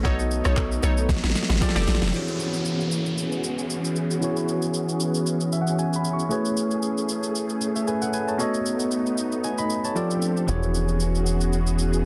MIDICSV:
0, 0, Header, 1, 8, 480
1, 0, Start_track
1, 0, Key_signature, 4, "major"
1, 0, Tempo, 521739
1, 45, Time_signature, 4, 2, 24, 8
1, 11087, End_track
2, 0, Start_track
2, 0, Title_t, "Synth pluck"
2, 0, Program_c, 0, 84
2, 43, Note_on_c, 0, 63, 98
2, 45, Note_on_c, 0, 69, 86
2, 48, Note_on_c, 0, 73, 109
2, 143, Note_off_c, 0, 63, 0
2, 144, Note_off_c, 0, 69, 0
2, 145, Note_off_c, 0, 73, 0
2, 415, Note_on_c, 0, 63, 77
2, 418, Note_on_c, 0, 69, 71
2, 421, Note_on_c, 0, 73, 86
2, 738, Note_off_c, 0, 63, 0
2, 739, Note_off_c, 0, 69, 0
2, 741, Note_off_c, 0, 73, 0
2, 764, Note_on_c, 0, 63, 81
2, 766, Note_on_c, 0, 69, 73
2, 769, Note_on_c, 0, 73, 94
2, 987, Note_off_c, 0, 63, 0
2, 988, Note_off_c, 0, 69, 0
2, 990, Note_off_c, 0, 73, 0
2, 1614, Note_on_c, 0, 67, 83
2, 1616, Note_on_c, 0, 69, 75
2, 1619, Note_on_c, 0, 74, 90
2, 1696, Note_off_c, 0, 67, 0
2, 1698, Note_off_c, 0, 69, 0
2, 1699, Note_off_c, 0, 74, 0
2, 11087, End_track
3, 0, Start_track
3, 0, Title_t, "Tine electric piano"
3, 0, Program_c, 1, 4
3, 0, Control_c, 1, 64, 127
3, 30, Note_on_c, 1, 59, 83
3, 37, Note_on_c, 1, 66, 77
3, 46, Note_on_c, 1, 69, 76
3, 53, Note_on_c, 1, 73, 75
3, 56, Control_c, 1, 64, 0
3, 60, Note_on_c, 1, 75, 91
3, 223, Control_c, 1, 64, 127
3, 1448, Note_off_c, 1, 59, 0
3, 1452, Note_off_c, 1, 66, 0
3, 1456, Note_off_c, 1, 69, 0
3, 1460, Note_off_c, 1, 73, 0
3, 1464, Note_off_c, 1, 75, 0
3, 1478, Note_on_c, 1, 53, 80
3, 1482, Note_on_c, 1, 65, 76
3, 1486, Note_on_c, 1, 67, 74
3, 1489, Note_on_c, 1, 68, 61
3, 1493, Note_on_c, 1, 74, 92
3, 1499, Control_c, 1, 64, 0
3, 1547, Note_on_c, 1, 69, 73
3, 1550, Note_off_c, 1, 68, 0
3, 1640, Control_c, 1, 64, 127
3, 1951, Note_on_c, 1, 52, 75
3, 1958, Note_on_c, 1, 64, 68
3, 1962, Note_off_c, 1, 53, 0
3, 1963, Note_off_c, 1, 65, 0
3, 1965, Note_off_c, 1, 67, 0
3, 1967, Note_on_c, 1, 66, 68
3, 1969, Note_off_c, 1, 74, 0
3, 1974, Note_on_c, 1, 68, 67
3, 1977, Control_c, 1, 64, 0
3, 1982, Note_on_c, 1, 73, 78
3, 1996, Note_off_c, 1, 69, 0
3, 2131, Control_c, 1, 64, 127
3, 3841, Note_off_c, 1, 52, 0
3, 3844, Note_off_c, 1, 64, 0
3, 3849, Note_off_c, 1, 66, 0
3, 3853, Note_off_c, 1, 68, 0
3, 3857, Note_off_c, 1, 73, 0
3, 3871, Note_on_c, 1, 52, 72
3, 3878, Note_on_c, 1, 64, 66
3, 3886, Note_on_c, 1, 66, 66
3, 3893, Note_on_c, 1, 68, 68
3, 3900, Note_on_c, 1, 73, 82
3, 5084, Note_on_c, 1, 76, 72
3, 5159, Note_off_c, 1, 76, 0
3, 5166, Note_on_c, 1, 78, 73
3, 5314, Note_off_c, 1, 78, 0
3, 5325, Note_on_c, 1, 80, 74
3, 5474, Note_off_c, 1, 80, 0
3, 5483, Note_on_c, 1, 83, 70
3, 5633, Note_off_c, 1, 83, 0
3, 5643, Note_on_c, 1, 85, 68
3, 5761, Note_off_c, 1, 52, 0
3, 5765, Note_off_c, 1, 64, 0
3, 5768, Note_off_c, 1, 66, 0
3, 5772, Note_off_c, 1, 68, 0
3, 5776, Note_off_c, 1, 73, 0
3, 5788, Note_on_c, 1, 57, 74
3, 5793, Note_off_c, 1, 85, 0
3, 5795, Note_on_c, 1, 64, 68
3, 5802, Note_on_c, 1, 68, 71
3, 5810, Note_on_c, 1, 71, 68
3, 5817, Control_c, 1, 64, 0
3, 5818, Note_on_c, 1, 73, 81
3, 5984, Control_c, 1, 64, 127
3, 6979, Note_off_c, 1, 68, 0
3, 6984, Note_off_c, 1, 71, 0
3, 6987, Note_off_c, 1, 73, 0
3, 7136, Note_on_c, 1, 76, 61
3, 7141, Note_on_c, 1, 68, 50
3, 7239, Note_off_c, 1, 76, 0
3, 7242, Note_off_c, 1, 68, 0
3, 7245, Note_on_c, 1, 80, 66
3, 7250, Note_on_c, 1, 71, 57
3, 7370, Note_off_c, 1, 80, 0
3, 7373, Note_off_c, 1, 71, 0
3, 7378, Note_on_c, 1, 78, 68
3, 7384, Note_on_c, 1, 69, 59
3, 7480, Note_off_c, 1, 78, 0
3, 7483, Note_off_c, 1, 69, 0
3, 7485, Note_on_c, 1, 80, 66
3, 7491, Note_on_c, 1, 71, 56
3, 7610, Note_off_c, 1, 80, 0
3, 7613, Note_off_c, 1, 71, 0
3, 7616, Note_on_c, 1, 81, 58
3, 7621, Note_on_c, 1, 73, 52
3, 7680, Note_off_c, 1, 57, 0
3, 7683, Note_off_c, 1, 64, 0
3, 7710, Note_on_c, 1, 59, 76
3, 7717, Note_on_c, 1, 66, 69
3, 7721, Note_off_c, 1, 73, 0
3, 7724, Note_on_c, 1, 69, 67
3, 7732, Note_on_c, 1, 73, 67
3, 7737, Control_c, 1, 64, 0
3, 7740, Note_on_c, 1, 75, 80
3, 7844, Note_off_c, 1, 81, 0
3, 7915, Control_c, 1, 64, 127
3, 8669, Note_off_c, 1, 73, 0
3, 8673, Note_off_c, 1, 75, 0
3, 8688, Note_on_c, 1, 80, 62
3, 8693, Note_on_c, 1, 71, 51
3, 8812, Note_off_c, 1, 80, 0
3, 8814, Note_off_c, 1, 71, 0
3, 8818, Note_on_c, 1, 83, 66
3, 8824, Note_on_c, 1, 75, 55
3, 9045, Note_off_c, 1, 83, 0
3, 9049, Note_off_c, 1, 75, 0
3, 9058, Note_on_c, 1, 81, 60
3, 9064, Note_on_c, 1, 73, 54
3, 9128, Note_off_c, 1, 59, 0
3, 9132, Note_off_c, 1, 66, 0
3, 9136, Note_off_c, 1, 69, 0
3, 9157, Note_on_c, 1, 53, 73
3, 9161, Note_on_c, 1, 65, 68
3, 9163, Note_on_c, 1, 67, 69
3, 9169, Note_on_c, 1, 69, 66
3, 9172, Note_on_c, 1, 74, 76
3, 9179, Control_c, 1, 64, 0
3, 9285, Note_off_c, 1, 81, 0
3, 9289, Note_off_c, 1, 73, 0
3, 9344, Control_c, 1, 64, 127
3, 9630, Note_on_c, 1, 52, 73
3, 9638, Note_on_c, 1, 64, 67
3, 9641, Note_off_c, 1, 53, 0
3, 9643, Note_off_c, 1, 65, 0
3, 9644, Note_off_c, 1, 67, 0
3, 9645, Note_on_c, 1, 66, 69
3, 9647, Note_off_c, 1, 69, 0
3, 9649, Note_off_c, 1, 74, 0
3, 9653, Note_on_c, 1, 68, 67
3, 9656, Control_c, 1, 64, 0
3, 9659, Note_on_c, 1, 73, 82
3, 9842, Control_c, 1, 64, 127
3, 11087, Note_off_c, 1, 52, 0
3, 11087, Note_off_c, 1, 64, 0
3, 11087, Note_off_c, 1, 66, 0
3, 11087, Note_off_c, 1, 68, 0
3, 11087, Note_off_c, 1, 73, 0
3, 11087, End_track
4, 0, Start_track
4, 0, Title_t, "String machine"
4, 0, Program_c, 2, 50
4, 44, Note_on_c, 2, 59, 77
4, 45, Note_on_c, 2, 57, 84
4, 45, Note_on_c, 2, 63, 88
4, 1470, Note_off_c, 2, 59, 0
4, 1471, Note_off_c, 2, 57, 0
4, 1471, Note_off_c, 2, 63, 0
4, 1484, Note_on_c, 2, 53, 75
4, 1484, Note_on_c, 2, 60, 71
4, 1484, Note_on_c, 2, 62, 70
4, 1485, Note_on_c, 2, 69, 86
4, 1486, Note_on_c, 2, 67, 70
4, 1960, Note_off_c, 2, 53, 0
4, 1960, Note_off_c, 2, 60, 0
4, 1960, Note_off_c, 2, 62, 0
4, 1960, Note_off_c, 2, 69, 0
4, 1961, Note_off_c, 2, 67, 0
4, 1965, Note_on_c, 2, 66, 68
4, 1966, Note_on_c, 2, 61, 70
4, 1967, Note_on_c, 2, 52, 79
4, 1967, Note_on_c, 2, 59, 73
4, 1967, Note_on_c, 2, 68, 88
4, 5768, Note_off_c, 2, 66, 0
4, 5769, Note_off_c, 2, 52, 0
4, 5769, Note_off_c, 2, 59, 0
4, 5769, Note_off_c, 2, 68, 0
4, 5806, Note_on_c, 2, 68, 76
4, 5807, Note_on_c, 2, 57, 72
4, 7689, Note_off_c, 2, 61, 0
4, 7706, Note_off_c, 2, 68, 0
4, 7726, Note_on_c, 2, 59, 74
4, 7726, Note_on_c, 2, 63, 85
4, 9132, Note_off_c, 2, 57, 0
4, 9151, Note_off_c, 2, 59, 0
4, 9151, Note_off_c, 2, 63, 0
4, 9163, Note_on_c, 2, 67, 68
4, 9165, Note_on_c, 2, 60, 67
4, 9165, Note_on_c, 2, 62, 64
4, 9165, Note_on_c, 2, 69, 84
4, 9166, Note_on_c, 2, 53, 72
4, 9639, Note_off_c, 2, 67, 0
4, 9640, Note_off_c, 2, 60, 0
4, 9640, Note_off_c, 2, 62, 0
4, 9640, Note_off_c, 2, 69, 0
4, 9641, Note_off_c, 2, 53, 0
4, 9643, Note_on_c, 2, 52, 76
4, 9644, Note_on_c, 2, 59, 71
4, 9644, Note_on_c, 2, 61, 73
4, 9644, Note_on_c, 2, 66, 71
4, 9644, Note_on_c, 2, 68, 82
4, 11087, Note_off_c, 2, 52, 0
4, 11087, Note_off_c, 2, 59, 0
4, 11087, Note_off_c, 2, 61, 0
4, 11087, Note_off_c, 2, 66, 0
4, 11087, Note_off_c, 2, 68, 0
4, 11087, End_track
5, 0, Start_track
5, 0, Title_t, "Log drum bass"
5, 0, Program_c, 3, 39
5, 45, Note_on_c, 3, 35, 107
5, 383, Note_off_c, 3, 35, 0
5, 417, Note_on_c, 3, 35, 93
5, 733, Note_off_c, 3, 35, 0
5, 765, Note_on_c, 3, 35, 97
5, 983, Note_off_c, 3, 35, 0
5, 1002, Note_on_c, 3, 33, 92
5, 1123, Note_off_c, 3, 33, 0
5, 1137, Note_on_c, 3, 33, 87
5, 1235, Note_off_c, 3, 33, 0
5, 1376, Note_on_c, 3, 32, 101
5, 1475, Note_off_c, 3, 32, 0
5, 1616, Note_on_c, 3, 29, 106
5, 1715, Note_off_c, 3, 29, 0
5, 1724, Note_on_c, 3, 33, 88
5, 1844, Note_off_c, 3, 33, 0
5, 1856, Note_on_c, 3, 29, 91
5, 1955, Note_off_c, 3, 29, 0
5, 11087, End_track
6, 0, Start_track
6, 0, Title_t, "Analog synth bass"
6, 0, Program_c, 4, 38
6, 9646, Note_on_c, 4, 28, 84
6, 11087, Note_off_c, 4, 28, 0
6, 11087, End_track
7, 0, Start_track
7, 0, Title_t, "Downlifter"
7, 0, Program_c, 5, 103
7, 1965, Note_on_c, 5, 60, 79
7, 5805, Note_off_c, 5, 60, 0
7, 11087, End_track
8, 0, Start_track
8, 0, Title_t, "Drums"
8, 45, Note_on_c, 9, 36, 123
8, 45, Note_on_c, 9, 82, 73
8, 46, Note_on_c, 9, 64, 76
8, 137, Note_off_c, 9, 36, 0
8, 137, Note_off_c, 9, 82, 0
8, 138, Note_off_c, 9, 64, 0
8, 175, Note_on_c, 9, 61, 51
8, 177, Note_on_c, 9, 82, 51
8, 267, Note_off_c, 9, 61, 0
8, 269, Note_off_c, 9, 82, 0
8, 286, Note_on_c, 9, 82, 84
8, 378, Note_off_c, 9, 82, 0
8, 410, Note_on_c, 9, 61, 74
8, 413, Note_on_c, 9, 82, 64
8, 415, Note_on_c, 9, 37, 109
8, 502, Note_off_c, 9, 61, 0
8, 505, Note_off_c, 9, 82, 0
8, 507, Note_off_c, 9, 37, 0
8, 521, Note_on_c, 9, 60, 73
8, 521, Note_on_c, 9, 64, 74
8, 521, Note_on_c, 9, 82, 76
8, 523, Note_on_c, 9, 39, 93
8, 524, Note_on_c, 9, 36, 92
8, 613, Note_off_c, 9, 60, 0
8, 613, Note_off_c, 9, 64, 0
8, 613, Note_off_c, 9, 82, 0
8, 615, Note_off_c, 9, 39, 0
8, 616, Note_off_c, 9, 36, 0
8, 659, Note_on_c, 9, 82, 51
8, 751, Note_off_c, 9, 82, 0
8, 759, Note_on_c, 9, 60, 49
8, 764, Note_on_c, 9, 82, 92
8, 851, Note_off_c, 9, 60, 0
8, 856, Note_off_c, 9, 82, 0
8, 895, Note_on_c, 9, 82, 60
8, 987, Note_off_c, 9, 82, 0
8, 1003, Note_on_c, 9, 36, 125
8, 1004, Note_on_c, 9, 61, 76
8, 1004, Note_on_c, 9, 64, 74
8, 1005, Note_on_c, 9, 38, 67
8, 1006, Note_on_c, 9, 82, 83
8, 1072, Note_off_c, 9, 38, 0
8, 1072, Note_on_c, 9, 38, 57
8, 1095, Note_off_c, 9, 36, 0
8, 1096, Note_off_c, 9, 61, 0
8, 1096, Note_off_c, 9, 64, 0
8, 1098, Note_off_c, 9, 82, 0
8, 1136, Note_on_c, 9, 82, 58
8, 1138, Note_off_c, 9, 38, 0
8, 1138, Note_on_c, 9, 38, 71
8, 1193, Note_off_c, 9, 38, 0
8, 1193, Note_on_c, 9, 38, 66
8, 1228, Note_off_c, 9, 82, 0
8, 1246, Note_off_c, 9, 38, 0
8, 1246, Note_on_c, 9, 38, 77
8, 1246, Note_on_c, 9, 82, 90
8, 1312, Note_off_c, 9, 38, 0
8, 1312, Note_on_c, 9, 38, 69
8, 1338, Note_off_c, 9, 82, 0
8, 1374, Note_on_c, 9, 61, 74
8, 1379, Note_off_c, 9, 38, 0
8, 1379, Note_on_c, 9, 38, 84
8, 1381, Note_on_c, 9, 82, 57
8, 1433, Note_off_c, 9, 38, 0
8, 1433, Note_on_c, 9, 38, 76
8, 1466, Note_off_c, 9, 61, 0
8, 1473, Note_off_c, 9, 82, 0
8, 1483, Note_on_c, 9, 36, 91
8, 1487, Note_off_c, 9, 38, 0
8, 1487, Note_on_c, 9, 38, 93
8, 1488, Note_on_c, 9, 82, 85
8, 1490, Note_on_c, 9, 60, 84
8, 1553, Note_off_c, 9, 38, 0
8, 1553, Note_on_c, 9, 38, 80
8, 1575, Note_off_c, 9, 36, 0
8, 1580, Note_off_c, 9, 82, 0
8, 1582, Note_off_c, 9, 60, 0
8, 1619, Note_off_c, 9, 38, 0
8, 1619, Note_on_c, 9, 38, 104
8, 1621, Note_on_c, 9, 82, 66
8, 1672, Note_off_c, 9, 38, 0
8, 1672, Note_on_c, 9, 38, 89
8, 1713, Note_off_c, 9, 82, 0
8, 1723, Note_on_c, 9, 82, 83
8, 1725, Note_off_c, 9, 38, 0
8, 1725, Note_on_c, 9, 38, 106
8, 1791, Note_off_c, 9, 38, 0
8, 1791, Note_on_c, 9, 38, 87
8, 1815, Note_off_c, 9, 82, 0
8, 1857, Note_off_c, 9, 38, 0
8, 1857, Note_on_c, 9, 38, 117
8, 1859, Note_on_c, 9, 82, 50
8, 1910, Note_off_c, 9, 38, 0
8, 1910, Note_on_c, 9, 38, 107
8, 1951, Note_off_c, 9, 82, 0
8, 1964, Note_on_c, 9, 82, 62
8, 2002, Note_off_c, 9, 38, 0
8, 2056, Note_off_c, 9, 82, 0
8, 2097, Note_on_c, 9, 82, 49
8, 2189, Note_off_c, 9, 82, 0
8, 2206, Note_on_c, 9, 82, 74
8, 2298, Note_off_c, 9, 82, 0
8, 2332, Note_on_c, 9, 82, 59
8, 2424, Note_off_c, 9, 82, 0
8, 2441, Note_on_c, 9, 82, 71
8, 2533, Note_off_c, 9, 82, 0
8, 2579, Note_on_c, 9, 82, 43
8, 2671, Note_off_c, 9, 82, 0
8, 2682, Note_on_c, 9, 82, 84
8, 2774, Note_off_c, 9, 82, 0
8, 2814, Note_on_c, 9, 82, 56
8, 2906, Note_off_c, 9, 82, 0
8, 2925, Note_on_c, 9, 82, 74
8, 3017, Note_off_c, 9, 82, 0
8, 3053, Note_on_c, 9, 82, 54
8, 3145, Note_off_c, 9, 82, 0
8, 3163, Note_on_c, 9, 82, 81
8, 3255, Note_off_c, 9, 82, 0
8, 3298, Note_on_c, 9, 82, 50
8, 3390, Note_off_c, 9, 82, 0
8, 3405, Note_on_c, 9, 82, 75
8, 3497, Note_off_c, 9, 82, 0
8, 3538, Note_on_c, 9, 82, 58
8, 3630, Note_off_c, 9, 82, 0
8, 3642, Note_on_c, 9, 82, 82
8, 3734, Note_off_c, 9, 82, 0
8, 3778, Note_on_c, 9, 82, 46
8, 3870, Note_off_c, 9, 82, 0
8, 3884, Note_on_c, 9, 82, 65
8, 3976, Note_off_c, 9, 82, 0
8, 4017, Note_on_c, 9, 82, 48
8, 4109, Note_off_c, 9, 82, 0
8, 4125, Note_on_c, 9, 82, 76
8, 4217, Note_off_c, 9, 82, 0
8, 4252, Note_on_c, 9, 82, 62
8, 4344, Note_off_c, 9, 82, 0
8, 4359, Note_on_c, 9, 82, 72
8, 4451, Note_off_c, 9, 82, 0
8, 4497, Note_on_c, 9, 82, 44
8, 4589, Note_off_c, 9, 82, 0
8, 4601, Note_on_c, 9, 82, 85
8, 4693, Note_off_c, 9, 82, 0
8, 4733, Note_on_c, 9, 82, 57
8, 4825, Note_off_c, 9, 82, 0
8, 4844, Note_on_c, 9, 82, 75
8, 4936, Note_off_c, 9, 82, 0
8, 4972, Note_on_c, 9, 82, 54
8, 5064, Note_off_c, 9, 82, 0
8, 5083, Note_on_c, 9, 82, 81
8, 5175, Note_off_c, 9, 82, 0
8, 5217, Note_on_c, 9, 82, 51
8, 5309, Note_off_c, 9, 82, 0
8, 5324, Note_on_c, 9, 82, 73
8, 5416, Note_off_c, 9, 82, 0
8, 5459, Note_on_c, 9, 82, 57
8, 5551, Note_off_c, 9, 82, 0
8, 5563, Note_on_c, 9, 82, 77
8, 5655, Note_off_c, 9, 82, 0
8, 5697, Note_on_c, 9, 82, 45
8, 5789, Note_off_c, 9, 82, 0
8, 5804, Note_on_c, 9, 82, 64
8, 5896, Note_off_c, 9, 82, 0
8, 5936, Note_on_c, 9, 82, 50
8, 6028, Note_off_c, 9, 82, 0
8, 6044, Note_on_c, 9, 82, 77
8, 6136, Note_off_c, 9, 82, 0
8, 6171, Note_on_c, 9, 82, 60
8, 6263, Note_off_c, 9, 82, 0
8, 6279, Note_on_c, 9, 82, 70
8, 6371, Note_off_c, 9, 82, 0
8, 6418, Note_on_c, 9, 82, 46
8, 6510, Note_off_c, 9, 82, 0
8, 6522, Note_on_c, 9, 82, 82
8, 6614, Note_off_c, 9, 82, 0
8, 6653, Note_on_c, 9, 82, 54
8, 6745, Note_off_c, 9, 82, 0
8, 6766, Note_on_c, 9, 82, 78
8, 6858, Note_off_c, 9, 82, 0
8, 6894, Note_on_c, 9, 82, 57
8, 6986, Note_off_c, 9, 82, 0
8, 7004, Note_on_c, 9, 82, 81
8, 7096, Note_off_c, 9, 82, 0
8, 7137, Note_on_c, 9, 82, 49
8, 7229, Note_off_c, 9, 82, 0
8, 7244, Note_on_c, 9, 82, 74
8, 7336, Note_off_c, 9, 82, 0
8, 7378, Note_on_c, 9, 82, 62
8, 7470, Note_off_c, 9, 82, 0
8, 7483, Note_on_c, 9, 82, 77
8, 7575, Note_off_c, 9, 82, 0
8, 7618, Note_on_c, 9, 82, 47
8, 7710, Note_off_c, 9, 82, 0
8, 7724, Note_on_c, 9, 82, 68
8, 7816, Note_off_c, 9, 82, 0
8, 7857, Note_on_c, 9, 82, 47
8, 7949, Note_off_c, 9, 82, 0
8, 7966, Note_on_c, 9, 82, 74
8, 8058, Note_off_c, 9, 82, 0
8, 8092, Note_on_c, 9, 82, 60
8, 8184, Note_off_c, 9, 82, 0
8, 8200, Note_on_c, 9, 82, 72
8, 8292, Note_off_c, 9, 82, 0
8, 8337, Note_on_c, 9, 82, 48
8, 8429, Note_off_c, 9, 82, 0
8, 8442, Note_on_c, 9, 82, 86
8, 8534, Note_off_c, 9, 82, 0
8, 8574, Note_on_c, 9, 82, 53
8, 8666, Note_off_c, 9, 82, 0
8, 8684, Note_on_c, 9, 82, 76
8, 8776, Note_off_c, 9, 82, 0
8, 8813, Note_on_c, 9, 82, 54
8, 8905, Note_off_c, 9, 82, 0
8, 8923, Note_on_c, 9, 82, 80
8, 9015, Note_off_c, 9, 82, 0
8, 9057, Note_on_c, 9, 82, 52
8, 9149, Note_off_c, 9, 82, 0
8, 9164, Note_on_c, 9, 82, 74
8, 9256, Note_off_c, 9, 82, 0
8, 9298, Note_on_c, 9, 82, 59
8, 9390, Note_off_c, 9, 82, 0
8, 9402, Note_on_c, 9, 82, 77
8, 9494, Note_off_c, 9, 82, 0
8, 9538, Note_on_c, 9, 82, 46
8, 9630, Note_off_c, 9, 82, 0
8, 9644, Note_on_c, 9, 82, 67
8, 9736, Note_off_c, 9, 82, 0
8, 9778, Note_on_c, 9, 82, 49
8, 9870, Note_off_c, 9, 82, 0
8, 9886, Note_on_c, 9, 82, 76
8, 9978, Note_off_c, 9, 82, 0
8, 10012, Note_on_c, 9, 82, 59
8, 10104, Note_off_c, 9, 82, 0
8, 10120, Note_on_c, 9, 82, 74
8, 10212, Note_off_c, 9, 82, 0
8, 10259, Note_on_c, 9, 82, 44
8, 10351, Note_off_c, 9, 82, 0
8, 10362, Note_on_c, 9, 82, 83
8, 10454, Note_off_c, 9, 82, 0
8, 10494, Note_on_c, 9, 82, 54
8, 10586, Note_off_c, 9, 82, 0
8, 10606, Note_on_c, 9, 82, 77
8, 10698, Note_off_c, 9, 82, 0
8, 10734, Note_on_c, 9, 82, 55
8, 10826, Note_off_c, 9, 82, 0
8, 10844, Note_on_c, 9, 82, 79
8, 10936, Note_off_c, 9, 82, 0
8, 10978, Note_on_c, 9, 82, 53
8, 11070, Note_off_c, 9, 82, 0
8, 11087, End_track
0, 0, End_of_file